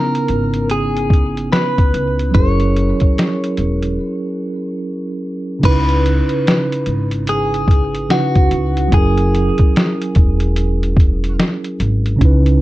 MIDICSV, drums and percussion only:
0, 0, Header, 1, 2, 480
1, 0, Start_track
1, 0, Tempo, 821918
1, 1369, Time_signature, 4, 2, 24, 8
1, 7367, End_track
2, 0, Start_track
2, 0, Title_t, "Drums"
2, 87, Note_on_c, 9, 42, 54
2, 146, Note_off_c, 9, 42, 0
2, 166, Note_on_c, 9, 42, 53
2, 224, Note_off_c, 9, 42, 0
2, 313, Note_on_c, 9, 42, 49
2, 371, Note_off_c, 9, 42, 0
2, 406, Note_on_c, 9, 42, 82
2, 465, Note_off_c, 9, 42, 0
2, 564, Note_on_c, 9, 42, 41
2, 623, Note_off_c, 9, 42, 0
2, 644, Note_on_c, 9, 36, 92
2, 662, Note_on_c, 9, 42, 57
2, 702, Note_off_c, 9, 36, 0
2, 721, Note_off_c, 9, 42, 0
2, 801, Note_on_c, 9, 42, 45
2, 860, Note_off_c, 9, 42, 0
2, 893, Note_on_c, 9, 42, 53
2, 894, Note_on_c, 9, 38, 90
2, 952, Note_off_c, 9, 38, 0
2, 952, Note_off_c, 9, 42, 0
2, 1041, Note_on_c, 9, 42, 47
2, 1042, Note_on_c, 9, 36, 86
2, 1100, Note_off_c, 9, 36, 0
2, 1100, Note_off_c, 9, 42, 0
2, 1134, Note_on_c, 9, 42, 63
2, 1192, Note_off_c, 9, 42, 0
2, 1281, Note_on_c, 9, 42, 38
2, 1340, Note_off_c, 9, 42, 0
2, 1370, Note_on_c, 9, 42, 74
2, 1371, Note_on_c, 9, 36, 119
2, 1429, Note_off_c, 9, 36, 0
2, 1429, Note_off_c, 9, 42, 0
2, 1517, Note_on_c, 9, 42, 44
2, 1575, Note_off_c, 9, 42, 0
2, 1615, Note_on_c, 9, 42, 60
2, 1673, Note_off_c, 9, 42, 0
2, 1752, Note_on_c, 9, 42, 45
2, 1762, Note_on_c, 9, 36, 77
2, 1811, Note_off_c, 9, 42, 0
2, 1820, Note_off_c, 9, 36, 0
2, 1859, Note_on_c, 9, 42, 78
2, 1863, Note_on_c, 9, 38, 103
2, 1917, Note_off_c, 9, 42, 0
2, 1922, Note_off_c, 9, 38, 0
2, 2007, Note_on_c, 9, 42, 56
2, 2066, Note_off_c, 9, 42, 0
2, 2087, Note_on_c, 9, 42, 59
2, 2145, Note_off_c, 9, 42, 0
2, 2234, Note_on_c, 9, 42, 47
2, 2292, Note_off_c, 9, 42, 0
2, 3290, Note_on_c, 9, 49, 92
2, 3291, Note_on_c, 9, 36, 102
2, 3291, Note_on_c, 9, 42, 83
2, 3348, Note_off_c, 9, 49, 0
2, 3349, Note_off_c, 9, 36, 0
2, 3350, Note_off_c, 9, 42, 0
2, 3439, Note_on_c, 9, 42, 42
2, 3497, Note_off_c, 9, 42, 0
2, 3538, Note_on_c, 9, 42, 65
2, 3596, Note_off_c, 9, 42, 0
2, 3674, Note_on_c, 9, 42, 42
2, 3733, Note_off_c, 9, 42, 0
2, 3780, Note_on_c, 9, 42, 80
2, 3785, Note_on_c, 9, 38, 115
2, 3839, Note_off_c, 9, 42, 0
2, 3843, Note_off_c, 9, 38, 0
2, 3927, Note_on_c, 9, 42, 52
2, 3985, Note_off_c, 9, 42, 0
2, 4006, Note_on_c, 9, 42, 55
2, 4065, Note_off_c, 9, 42, 0
2, 4154, Note_on_c, 9, 42, 52
2, 4213, Note_off_c, 9, 42, 0
2, 4247, Note_on_c, 9, 42, 87
2, 4305, Note_off_c, 9, 42, 0
2, 4404, Note_on_c, 9, 42, 36
2, 4462, Note_off_c, 9, 42, 0
2, 4484, Note_on_c, 9, 36, 87
2, 4502, Note_on_c, 9, 42, 63
2, 4542, Note_off_c, 9, 36, 0
2, 4560, Note_off_c, 9, 42, 0
2, 4640, Note_on_c, 9, 42, 45
2, 4699, Note_off_c, 9, 42, 0
2, 4732, Note_on_c, 9, 38, 84
2, 4732, Note_on_c, 9, 42, 57
2, 4790, Note_off_c, 9, 42, 0
2, 4791, Note_off_c, 9, 38, 0
2, 4879, Note_on_c, 9, 42, 47
2, 4881, Note_on_c, 9, 36, 86
2, 4937, Note_off_c, 9, 42, 0
2, 4939, Note_off_c, 9, 36, 0
2, 4970, Note_on_c, 9, 42, 59
2, 5029, Note_off_c, 9, 42, 0
2, 5121, Note_on_c, 9, 42, 45
2, 5179, Note_off_c, 9, 42, 0
2, 5210, Note_on_c, 9, 42, 89
2, 5211, Note_on_c, 9, 36, 110
2, 5269, Note_off_c, 9, 42, 0
2, 5270, Note_off_c, 9, 36, 0
2, 5358, Note_on_c, 9, 42, 47
2, 5417, Note_off_c, 9, 42, 0
2, 5458, Note_on_c, 9, 42, 60
2, 5517, Note_off_c, 9, 42, 0
2, 5594, Note_on_c, 9, 42, 47
2, 5603, Note_on_c, 9, 36, 80
2, 5653, Note_off_c, 9, 42, 0
2, 5662, Note_off_c, 9, 36, 0
2, 5701, Note_on_c, 9, 42, 80
2, 5706, Note_on_c, 9, 38, 107
2, 5760, Note_off_c, 9, 42, 0
2, 5765, Note_off_c, 9, 38, 0
2, 5849, Note_on_c, 9, 42, 55
2, 5908, Note_off_c, 9, 42, 0
2, 5928, Note_on_c, 9, 42, 56
2, 5934, Note_on_c, 9, 36, 82
2, 5986, Note_off_c, 9, 42, 0
2, 5992, Note_off_c, 9, 36, 0
2, 6074, Note_on_c, 9, 42, 53
2, 6132, Note_off_c, 9, 42, 0
2, 6169, Note_on_c, 9, 42, 93
2, 6227, Note_off_c, 9, 42, 0
2, 6325, Note_on_c, 9, 42, 40
2, 6383, Note_off_c, 9, 42, 0
2, 6404, Note_on_c, 9, 36, 104
2, 6423, Note_on_c, 9, 42, 65
2, 6463, Note_off_c, 9, 36, 0
2, 6481, Note_off_c, 9, 42, 0
2, 6563, Note_on_c, 9, 42, 44
2, 6622, Note_off_c, 9, 42, 0
2, 6655, Note_on_c, 9, 38, 94
2, 6655, Note_on_c, 9, 42, 51
2, 6713, Note_off_c, 9, 38, 0
2, 6713, Note_off_c, 9, 42, 0
2, 6800, Note_on_c, 9, 42, 45
2, 6858, Note_off_c, 9, 42, 0
2, 6891, Note_on_c, 9, 42, 64
2, 6950, Note_off_c, 9, 42, 0
2, 7042, Note_on_c, 9, 42, 41
2, 7100, Note_off_c, 9, 42, 0
2, 7131, Note_on_c, 9, 36, 104
2, 7132, Note_on_c, 9, 42, 83
2, 7190, Note_off_c, 9, 36, 0
2, 7190, Note_off_c, 9, 42, 0
2, 7277, Note_on_c, 9, 42, 47
2, 7336, Note_off_c, 9, 42, 0
2, 7367, End_track
0, 0, End_of_file